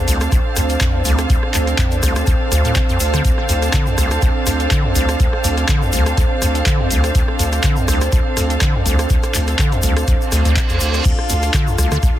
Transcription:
Already playing: analog synth pad C4, string section D4 A4 F5 A5
0.08 acid bass C2, sub bass D2, open hi-hat, shaker
0.20 cross-stick, closed hi-hat, shaker
0.32 acid bass D2, kick, cross-stick, closed hi-hat, shaker
0.56 sub bass D2, acid bass F2, cross-stick, open hi-hat, shaker
0.69 closed hi-hat, shaker
0.80 acid bass F2, kick, cross-stick, clap, closed hi-hat, shaker
0.94 acid bass E2
1.05 acid bass C2, sub bass D2, open hi-hat, shaker
1.18 cross-stick, closed hi-hat, shaker
1.30 acid bass D2, kick, closed hi-hat, shaker
1.43 cross-stick
1.54 sub bass D2, acid bass F2, clap, open hi-hat, shaker
1.67 cross-stick, closed hi-hat, shaker
1.78 acid bass F2, kick, clap, closed hi-hat, shaker
1.91 acid bass E2, closed hi-hat, shaker
2.03 acid bass C2, sub bass D2, cross-stick, open hi-hat, shaker
2.16 cross-stick, closed hi-hat, shaker
2.27 acid bass D2, kick, cross-stick, closed hi-hat, shaker
2.52 acid bass D2, sub bass D2, cross-stick, open hi-hat, shaker
2.65 acid bass A2, closed hi-hat, shaker
2.75 acid bass D3, kick, cross-stick, clap, closed hi-hat, shaker
2.89 acid bass F2, closed hi-hat, shaker
3.00 sub bass D2, open hi-hat, shaker
3.14 acid bass D3, cross-stick, closed hi-hat, shaker
3.25 acid bass D2, kick, closed hi-hat, shaker
3.38 cross-stick
3.49 sub bass D2, acid bass F2, open hi-hat, shaker
3.62 cross-stick, closed hi-hat, shaker
3.73 acid bass D3, kick, clap, closed hi-hat, shaker
3.87 acid bass E2, shaker
3.98 acid bass C2, sub bass D2, cross-stick, open hi-hat, shaker
4.11 cross-stick, closed hi-hat, shaker
4.22 acid bass D2, kick, cross-stick, closed hi-hat, shaker
4.46 sub bass D2, acid bass F2, cross-stick, open hi-hat, shaker
4.60 closed hi-hat, shaker
4.71 acid bass D3, kick, cross-stick, clap, closed hi-hat, shaker
4.85 acid bass E2
4.95 acid bass C2, sub bass D2, open hi-hat, shaker
5.09 cross-stick, closed hi-hat, shaker
5.20 acid bass D2, kick, closed hi-hat, shaker
5.33 cross-stick
5.44 sub bass D2, acid bass F2, open hi-hat, shaker
5.57 cross-stick, closed hi-hat, shaker
5.68 acid bass D3, kick, clap, closed hi-hat, shaker
5.82 acid bass E2, shaker
5.92 acid bass C2, sub bass D2, open hi-hat, shaker
6.06 cross-stick, closed hi-hat, shaker
6.17 acid bass D2, kick, cross-stick, closed hi-hat, shaker
6.42 sub bass D2, acid bass F2, cross-stick, open hi-hat, shaker
6.55 closed hi-hat, shaker
6.66 acid bass D3, kick, cross-stick, clap, closed hi-hat, shaker
6.80 acid bass E2
6.91 acid bass C2, sub bass D2, open hi-hat, shaker
7.04 cross-stick, closed hi-hat, shaker
7.15 acid bass D2, kick, closed hi-hat, shaker
7.28 cross-stick
7.39 sub bass D2, acid bass F2, open hi-hat, shaker
7.52 cross-stick, closed hi-hat, shaker
7.63 acid bass D3, kick, clap, closed hi-hat, shaker
7.76 acid bass E2, shaker
7.88 acid bass C2, sub bass D2, cross-stick, open hi-hat, shaker
8.01 cross-stick, closed hi-hat, shaker
8.12 acid bass D2, kick, cross-stick, closed hi-hat, shaker
8.37 sub bass D2, acid bass F2, cross-stick, open hi-hat, shaker
8.50 closed hi-hat, shaker
8.61 acid bass D3, kick, cross-stick, clap, closed hi-hat, shaker
8.75 acid bass E2
8.86 acid bass C2, sub bass D2, open hi-hat, shaker
8.99 cross-stick, closed hi-hat, shaker
9.10 acid bass D2, kick, closed hi-hat, shaker
9.23 cross-stick, closed hi-hat, shaker
9.34 sub bass D2, acid bass F2, clap, open hi-hat, shaker
9.47 cross-stick, closed hi-hat, shaker
9.59 acid bass D3, kick, clap, closed hi-hat, shaker
9.72 acid bass E2, closed hi-hat, shaker
9.82 acid bass C2, sub bass D2, open hi-hat, shaker
9.97 cross-stick, closed hi-hat, shaker
10.07 acid bass D2, kick, cross-stick, closed hi-hat, reverse cymbal, shaker
10.22 shaker
10.32 acid bass D2, sub bass D2, cross-stick, open hi-hat, shaker
10.45 acid bass D2, closed hi-hat, shaker
10.56 acid bass D1, kick, cross-stick, clap, closed hi-hat, shaker
10.69 acid bass E2, closed hi-hat, shaker
10.80 sub bass D2, open hi-hat, shaker
10.94 cross-stick, closed hi-hat, shaker
11.05 acid bass D2, analog synth pad F4, kick, closed hi-hat, crash, shaker
11.19 cross-stick
11.29 sub bass D2, acid bass F2, open hi-hat, shaker
11.42 cross-stick, closed hi-hat, shaker
11.54 acid bass D3, kick, clap, closed hi-hat, shaker
11.67 acid bass E2, shaker
11.78 acid bass C2, sub bass D2, cross-stick, open hi-hat, shaker
11.91 acid bass D3, cross-stick, closed hi-hat, shaker
12.03 acid bass D2, kick, cross-stick, closed hi-hat, shaker

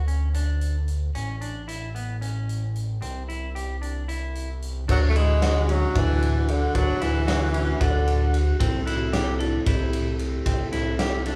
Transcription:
Already playing: analog synth bass D2
0.08 clean electric guitar C#4, closed hi-hat
0.34 clean electric guitar D4, closed hi-hat
0.61 closed hi-hat
0.88 closed hi-hat
1.15 analog synth bass A1, clean electric guitar C#4, closed hi-hat
1.41 clean electric guitar D4, closed hi-hat
1.68 clean electric guitar E4, closed hi-hat
1.95 clean electric guitar B3, closed hi-hat
2.21 clean electric guitar C#4, closed hi-hat
2.49 closed hi-hat
2.76 closed hi-hat
3.02 analog synth bass C2, clean electric guitar C4, closed hi-hat
3.29 clean electric guitar E4, closed hi-hat
3.55 clean electric guitar G4, closed hi-hat
3.82 clean electric guitar D4, closed hi-hat
4.08 clean electric guitar E4, closed hi-hat
4.35 closed hi-hat
4.62 closed hi-hat
4.88 analog synth bass D2, tonewheel organ D3 F#3 F#4, tenor saxophone F#3, clean electric guitar D4, kick, crash
5.09 tenor saxophone A3
5.16 tenor saxophone G#3, clean electric guitar E4, ride
5.42 clean electric guitar F#4, snare, ride
5.69 tenor saxophone F#3, clean electric guitar C#4, ride
5.95 analog synth bass D2, tenor saxophone E3, clean electric guitar D4, kick, ride
6.22 ride
6.48 tenor saxophone D3, ride
6.75 analog synth bass D2, tenor saxophone F#3, clean electric guitar D4, kick, ride
7.01 analog synth bass D2, tenor saxophone E3, clean electric guitar E4, snare, ride
7.27 clean electric guitar F#4, snare, ride
7.54 clean electric guitar C#4, ride
7.80 analog synth bass D2, tenor saxophone D3, clean electric guitar D4, kick, ride
8.08 ride
8.33 vibraphone F#4, ride
8.59 analog synth bass C2, tonewheel organ C3 A3 E4, clean electric guitar C4, vibraphone E4, kick, ride
8.86 clean electric guitar E4, vibraphone F#4, snare, ride
9.13 clean electric guitar G4, snare, ride
9.39 clean electric guitar D4, vibraphone E4, ride
9.66 analog synth bass C2, clean electric guitar E4, vibraphone G4, kick, ride
9.93 ride
10.19 ride
10.46 analog synth bass C2, clean electric guitar C4, kick, ride
10.72 analog synth bass C2, clean electric guitar E4, snare, ride
10.99 clean electric guitar G4, snare, ride
11.26 clean electric guitar D4, snare, ride

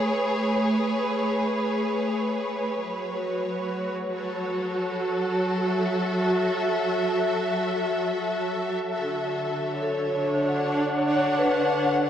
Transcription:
Already playing: string section A3 G#4 B4 C#5
2.81 string section F#3
3.13 string section F#4
4.17 string section A4
5.62 string section E5
9.05 string section D3
9.68 string section C#5
9.82 vibraphone A4
10.07 vibraphone C#5
10.15 string section D4
10.46 string section F#5
11.39 vibraphone B4

